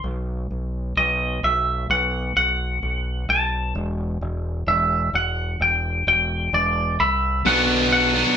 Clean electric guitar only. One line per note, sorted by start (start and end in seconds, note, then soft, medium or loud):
0.97 1.44 D#5 medium
1.44 1.90 E5 medium
1.91 2.36 F#5 medium
2.37 3.30 F#5 loud
3.30 3.72 A5 medium
4.68 5.16 E5 medium
5.15 5.62 F#5 medium
5.62 6.07 G5 medium
6.08 7.00 G5 loud
6.54 7.00 D5 loud
7.00 7.47 E5 loud
7.00 7.43 B5 medium
7.47 7.89 F#5 loud
7.92 8.35 F#5 loud